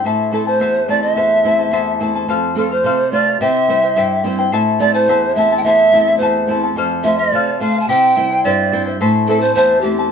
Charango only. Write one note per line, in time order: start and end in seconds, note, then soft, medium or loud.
0.06 0.32 E4 medium
0.06 0.33 A4 medium
0.06 0.32 C5 medium
0.06 0.31 E5 medium
0.06 0.33 A5 medium
0.32 0.47 E4 medium
0.32 0.46 C5 medium
0.32 0.46 E5 medium
0.32 0.46 A5 medium
0.47 0.60 E4 soft
0.47 0.60 C5 soft
0.47 0.60 A5 soft
0.60 0.88 E4 medium
0.60 0.88 A4 medium
0.60 0.88 C5 medium
0.60 0.87 E5 medium
0.60 0.89 A5 medium
0.88 1.03 E4 soft
0.88 1.02 C5 soft
0.88 1.02 E5 soft
0.88 1.01 A5 medium
1.03 1.16 E4 soft
1.03 1.16 C5 soft
1.03 1.16 A5 soft
1.16 1.44 E4 medium
1.16 1.44 A4 medium
1.16 1.45 C5 medium
1.16 1.44 E5 medium
1.16 1.45 A5 medium
1.45 1.59 E4 medium
1.45 1.59 C5 medium
1.45 1.59 E5 soft
1.45 1.57 A5 medium
1.59 1.72 E4 soft
1.59 1.72 C5 soft
1.59 1.72 A5 soft
1.72 2.00 E4 medium
1.72 2.00 A4 medium
1.72 2.01 C5 medium
1.72 2.00 E5 medium
1.72 2.01 A5 medium
2.01 2.15 E4 soft
2.01 2.15 C5 soft
2.01 2.15 E5 medium
2.01 2.14 A5 medium
2.15 2.29 E4 soft
2.15 2.28 C5 soft
2.15 2.29 A5 medium
2.29 2.56 A4 medium
2.29 2.57 C5 medium
2.29 2.57 F5 medium
2.57 2.71 A4 medium
2.57 2.71 C5 medium
2.57 2.70 F5 medium
2.71 2.85 C5 soft
2.71 2.85 F5 medium
2.85 3.12 A4 medium
2.85 3.13 C5 medium
2.85 3.13 F5 medium
3.14 3.27 A4 soft
3.14 3.27 C5 soft
3.14 3.26 F5 medium
3.27 3.40 C5 soft
3.27 3.41 F5 medium
3.41 3.69 E4 medium
3.41 3.69 G4 medium
3.41 3.69 C5 medium
3.41 3.68 E5 medium
3.41 3.69 G5 medium
3.69 3.83 E4 medium
3.69 3.83 C5 medium
3.69 3.83 E5 medium
3.69 3.81 G5 medium
3.83 3.96 E4 soft
3.83 3.96 C5 soft
3.83 3.96 G5 soft
3.97 4.25 E4 medium
3.97 4.25 G4 medium
3.97 4.25 C5 medium
3.97 4.24 E5 medium
3.97 4.25 G5 medium
4.25 4.39 E4 medium
4.25 4.38 C5 medium
4.25 4.39 E5 medium
4.25 4.37 G5 medium
4.39 4.52 E4 soft
4.39 4.51 C5 soft
4.39 4.53 G5 medium
4.52 4.80 E4 medium
4.52 4.81 A4 medium
4.52 4.80 C5 medium
4.52 4.79 E5 medium
4.52 4.81 A5 medium
4.80 4.95 E4 medium
4.80 4.94 A4 medium
4.80 4.94 E5 medium
4.80 4.94 A5 medium
4.95 5.08 E4 soft
4.95 5.09 A4 soft
4.95 5.09 A5 soft
5.09 5.37 E4 medium
5.09 5.37 A4 medium
5.09 5.37 C5 medium
5.09 5.36 E5 medium
5.09 5.37 A5 medium
5.38 5.51 E4 soft
5.38 5.51 A4 soft
5.38 5.51 E5 soft
5.38 5.51 A5 soft
5.52 5.65 E4 soft
5.52 5.65 A4 soft
5.52 5.65 A5 soft
5.66 5.93 E4 medium
5.66 5.93 A4 medium
5.66 5.93 C5 medium
5.66 5.93 E5 medium
5.66 5.94 A5 medium
5.94 6.07 E4 medium
5.94 6.07 A4 medium
5.94 6.07 E5 soft
5.94 6.06 A5 medium
6.08 6.21 E4 soft
6.08 6.21 A4 soft
6.08 6.21 A5 soft
6.22 6.49 E4 medium
6.22 6.49 A4 medium
6.22 6.49 C5 medium
6.22 6.49 E5 medium
6.22 6.50 A5 medium
6.50 6.64 E4 medium
6.50 6.63 A4 medium
6.50 6.63 E5 soft
6.50 6.62 A5 medium
6.63 6.78 E4 soft
6.63 6.76 A4 soft
6.63 6.77 A5 soft
6.77 7.04 A4 medium
6.77 7.05 C5 medium
6.77 7.05 F5 medium
7.05 7.19 A4 medium
7.05 7.19 C5 medium
7.05 7.19 F5 medium
7.20 7.34 C5 soft
7.20 7.33 F5 soft
7.34 7.60 A4 medium
7.34 7.61 C5 medium
7.34 7.61 F5 medium
7.61 7.75 A4 soft
7.61 7.75 C5 soft
7.61 7.74 F5 soft
7.75 7.88 C5 soft
7.75 7.89 F5 soft
7.89 8.15 E4 medium
7.89 8.16 G4 medium
7.89 8.16 C5 medium
7.89 8.15 E5 medium
7.89 8.16 G5 medium
8.16 8.30 E4 medium
8.16 8.30 C5 medium
8.16 8.30 E5 medium
8.16 8.29 G5 medium
8.31 8.45 E4 soft
8.31 8.45 C5 soft
8.31 8.44 G5 medium
8.45 8.71 E4 medium
8.45 8.72 G4 medium
8.45 8.72 C5 medium
8.45 8.71 E5 medium
8.45 8.72 G5 medium
8.72 8.86 E4 soft
8.72 8.86 C5 soft
8.72 8.86 E5 soft
8.72 8.85 G5 medium
8.86 9.00 E4 soft
8.86 9.00 C5 soft
8.86 9.00 G5 soft
9.00 9.28 E4 medium
9.00 9.28 A4 medium
9.00 9.29 C5 medium
9.00 9.27 E5 medium
9.00 9.29 A5 medium
9.29 9.42 E4 medium
9.29 9.42 C5 medium
9.29 9.42 E5 medium
9.29 9.41 A5 medium
9.43 9.56 E4 soft
9.43 9.56 C5 soft
9.43 9.56 A5 soft
9.56 9.84 E4 medium
9.56 9.84 A4 medium
9.56 9.84 C5 medium
9.56 9.83 E5 medium
9.56 9.85 A5 medium
9.84 9.98 E4 soft
9.84 9.98 C5 soft
9.84 9.98 E5 soft
9.84 9.98 A5 soft
9.99 10.12 E4 soft
9.99 10.12 C5 soft
9.99 10.12 A5 soft